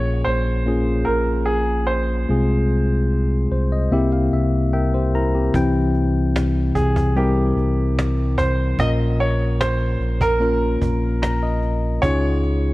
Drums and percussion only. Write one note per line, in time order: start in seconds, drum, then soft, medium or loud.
5.54 cajon bass medium
5.95 cajon slap soft
6.36 cajon slap medium
6.75 cajon bass medium
6.96 cajon bass medium
7.16 cajon slap soft
7.57 cajon slap soft
7.99 cajon slap medium
8.38 cajon bass medium
8.79 cajon bass medium
9.19 cajon slap soft
9.61 cajon slap medium
10.01 cajon slap soft
10.21 cajon bass medium
10.41 cajon slap soft
10.82 cajon bass medium
11.23 cajon slap medium
11.63 cajon slap soft
12.03 cajon bass medium
12.43 cajon slap soft